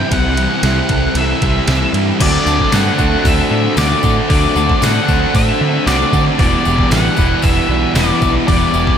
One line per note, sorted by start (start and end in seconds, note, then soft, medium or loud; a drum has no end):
0.00 0.11 C3 loud
0.00 0.11 E3 medium
0.00 0.11 G3 medium
0.00 0.12 C4 medium
0.00 0.64 C4 medium
0.00 0.12 E4 medium
0.00 0.63 E4 medium
0.00 0.15 A4 medium
0.00 0.13 G5 medium
0.11 0.46 C2 medium
0.11 0.62 C3 medium
0.11 0.64 C3 medium
0.11 0.63 E3 loud
0.11 0.63 G3 medium
0.11 0.36 G3 medium
0.11 0.38 G3 medium
0.11 0.65 C4 medium
0.11 0.37 C4 medium
0.11 0.36 E4 loud
0.11 1.21 F#5 medium
0.11 kick loud
0.11 ride medium
0.37 1.69 G3 medium
0.37 0.63 G3 medium
0.37 0.64 C4 medium
0.37 0.65 E4 medium
0.37 ride medium
0.51 snare soft
0.63 0.81 C2 medium
0.63 1.14 C3 medium
0.63 1.66 E3 medium
0.63 1.43 G3 medium
0.63 1.15 G3 medium
0.63 1.43 C4 medium
0.63 1.16 C4 medium
0.63 1.15 E4 medium
0.63 1.41 E4 medium
0.63 snare loud
0.63 ride medium
0.89 1.07 C2 medium
0.89 2.21 A4 medium
0.89 kick medium
0.89 ride medium
1.15 1.33 C2 loud
1.15 1.66 C3 medium
1.15 1.42 G3 medium
1.15 1.40 C4 medium
1.15 1.67 E4 medium
1.15 1.92 E5 medium
1.15 ride medium
1.41 1.59 C2 medium
1.41 1.68 G3 medium
1.41 1.67 G3 medium
1.41 1.69 C4 medium
1.41 2.21 C4 medium
1.41 1.68 C4 medium
1.41 1.68 E4 medium
1.41 kick medium
1.41 ride medium
1.67 1.85 C2 medium
1.67 2.19 C3 medium
1.67 2.19 E3 medium
1.67 1.95 G3 medium
1.67 2.20 G3 medium
1.67 1.94 C4 medium
1.67 2.20 C4 medium
1.67 2.21 E4 medium
1.67 1.93 E4 medium
1.67 snare loud
1.67 ride medium
1.93 2.11 G2 medium
1.93 2.20 G3 medium
1.93 2.20 C4 medium
1.93 2.19 E4 medium
1.93 ride medium
2.19 2.37 D2 medium
2.19 2.71 D3 medium
2.19 2.73 D3 loud
2.19 2.98 F#3 medium
2.19 2.47 A3 loud
2.19 2.48 A3 loud
2.19 2.47 C4 loud
2.19 2.45 D4 medium
2.19 2.47 F#4 medium
2.19 2.75 D5 medium
2.19 kick loud
2.19 open hi-hat medium
2.19 crash loud
2.45 2.62 D2 medium
2.45 2.72 A3 medium
2.45 2.74 A3 medium
2.45 2.74 C4 medium
2.45 2.73 D4 medium
2.45 2.75 F#4 medium
2.45 3.78 A4 medium
2.45 tambourine medium
2.60 kick medium
2.71 2.89 G2 medium
2.71 3.76 D3 medium
2.71 3.78 D3 medium
2.71 3.00 A3 medium
2.71 3.01 A3 medium
2.71 3.00 C4 loud
2.71 3.51 D4 medium
2.71 2.98 D4 medium
2.71 3.27 F#5 loud
2.71 snare loud
2.71 open hi-hat medium
2.71 tambourine medium
2.76 2.99 F#4 medium
2.99 3.15 D2 medium
2.99 3.76 D3 medium
2.99 4.29 F#3 medium
2.99 3.52 A3 medium
2.99 3.78 A3 medium
2.99 3.79 C4 medium
2.99 3.50 D4 medium
2.99 3.79 F#4 medium
2.99 kick medium
2.99 tambourine medium
3.25 3.41 D2 loud
3.25 3.77 C4 medium
3.25 3.78 E5 loud
3.25 kick loud
3.25 open hi-hat medium
3.25 tambourine medium
3.51 3.67 A2 medium
3.51 3.77 A3 medium
3.51 3.79 D4 medium
3.51 4.04 D4 medium
3.77 3.93 D2 medium
3.77 4.28 D3 loud
3.77 4.28 D3 medium
3.77 4.29 A3 loud
3.77 4.04 A3 medium
3.77 5.09 C4 medium
3.77 4.04 C4 medium
3.77 4.31 D4 loud
3.77 4.03 F#4 medium
3.77 4.15 D5 medium
3.77 snare loud
3.77 open hi-hat medium
3.77 tambourine loud
4.03 4.20 A2 medium
4.03 4.29 A3 medium
4.03 4.30 C4 medium
4.03 4.82 D4 medium
4.03 4.30 F#4 medium
4.03 kick medium
4.03 tambourine medium
4.29 4.46 D2 medium
4.29 4.80 D3 loud
4.29 4.81 D3 medium
4.29 5.08 F#3 medium
4.29 4.56 A3 loud
4.29 4.57 A3 medium
4.29 4.55 C4 loud
4.29 4.55 D4 medium
4.29 4.55 F#4 loud
4.29 4.84 D5 medium
4.29 kick loud
4.29 open hi-hat medium
4.55 4.72 D2 medium
4.55 4.81 A3 medium
4.55 4.82 A3 medium
4.55 4.82 C4 medium
4.55 4.85 D4 medium
4.55 4.83 F#4 medium
4.55 5.87 A4 medium
4.55 tambourine medium
4.70 kick medium
4.81 4.98 A2 medium
4.81 5.34 D3 medium
4.81 5.35 D3 medium
4.81 5.09 A3 loud
4.81 5.10 A3 medium
4.81 5.09 C4 loud
4.81 5.60 D4 medium
4.81 5.09 D4 medium
4.81 5.07 F#4 loud
4.81 5.37 F#5 loud
4.81 snare loud
4.81 open hi-hat medium
4.81 tambourine loud
5.08 5.24 D2 medium
5.08 5.85 D3 medium
5.08 6.39 F#3 medium
5.08 5.85 A3 medium
5.08 5.62 A3 medium
5.08 5.87 C4 medium
5.08 5.61 D4 medium
5.08 5.87 F#4 medium
5.08 kick medium
5.08 tambourine medium
5.34 5.50 A2 loud
5.34 5.85 C4 medium
5.34 5.87 E5 loud
5.34 kick loud
5.34 open hi-hat medium
5.34 tambourine medium
5.60 5.77 D3 medium
5.60 5.87 A3 medium
5.60 6.12 D4 medium
5.60 5.89 D4 medium
5.86 6.03 C2 loud
5.86 6.37 D3 medium
5.86 6.37 D3 loud
5.86 6.14 A3 medium
5.86 6.38 A3 loud
5.86 6.39 C4 medium
5.86 6.12 C4 medium
5.86 6.42 D4 loud
5.86 6.11 F#4 medium
5.86 6.24 D5 loud
5.86 snare loud
5.86 open hi-hat medium
5.86 tambourine medium
6.12 6.29 D3 loud
6.12 6.39 A3 medium
6.12 6.38 C4 medium
6.12 6.90 D4 medium
6.12 6.37 F#4 medium
6.12 kick medium
6.12 tambourine medium
6.38 6.55 E1 medium
6.38 6.90 E2 medium
6.38 6.67 B2 loud
6.38 6.90 E3 medium
6.38 6.66 E3 loud
6.38 6.66 G3 loud
6.38 6.65 B3 loud
6.38 7.16 B3 medium
6.38 6.64 E4 loud
6.38 6.93 D5 medium
6.38 kick loud
6.38 open hi-hat medium
6.64 6.82 E1 medium
6.64 6.93 E3 medium
6.64 6.91 G3 medium
6.64 6.92 B3 medium
6.64 6.92 E4 medium
6.64 7.96 G4 medium
6.64 tambourine medium
6.68 6.91 B2 medium
6.79 kick medium
6.90 7.07 A1 medium
6.90 7.95 E2 medium
6.90 7.17 B2 medium
6.90 7.96 E3 medium
6.90 7.16 E3 medium
6.90 7.19 G3 medium
6.90 7.18 B3 loud
6.90 7.69 D4 medium
6.90 7.17 E4 loud
6.90 7.45 F#5 loud
6.90 snare loud
6.90 open hi-hat medium
6.90 tambourine medium
7.17 7.33 E1 medium
7.17 7.94 E2 medium
7.17 7.70 B2 medium
7.17 7.68 E3 medium
7.17 7.96 G3 medium
7.17 7.43 B3 medium
7.17 7.96 B3 medium
7.17 7.97 E4 medium
7.17 kick medium
7.17 tambourine medium
7.42 7.59 E1 loud
7.42 7.95 B3 medium
7.42 7.92 E5 loud
7.42 kick loud
7.42 open hi-hat medium
7.42 tambourine medium
7.68 7.85 B1 medium
7.68 7.95 B2 medium
7.68 7.97 E3 medium
7.68 8.22 D4 medium
7.94 8.11 E1 medium
7.94 8.46 E2 medium
7.94 8.48 B2 loud
7.94 8.46 E3 medium
7.94 8.49 E3 loud
7.94 8.22 G3 medium
7.94 8.47 B3 medium
7.94 8.22 B3 medium
7.94 8.20 E4 medium
7.94 8.32 D5 medium
7.94 snare loud
7.94 open hi-hat medium
7.94 tambourine medium
8.22 8.37 B1 medium
8.22 8.47 G3 medium
8.22 8.48 B3 medium
8.22 8.98 D4 medium
8.22 8.49 E4 medium
8.22 kick medium
8.22 tambourine medium
8.47 8.64 E1 medium
8.47 8.98 E2 loud
8.47 8.75 B2 medium
8.47 8.98 E3 loud
8.47 8.72 E3 loud
8.47 8.74 G3 loud
8.47 8.98 B3 medium
8.47 8.73 B3 loud
8.47 8.72 E4 loud
8.47 8.98 D5 medium
8.47 kick loud
8.47 open hi-hat medium
8.47 tambourine soft
8.73 8.90 E1 medium
8.73 8.98 B2 medium
8.73 8.98 E3 medium
8.73 8.98 G3 medium
8.73 8.98 B3 medium
8.73 8.98 E4 medium
8.73 8.98 G4 medium
8.73 tambourine medium
8.87 kick medium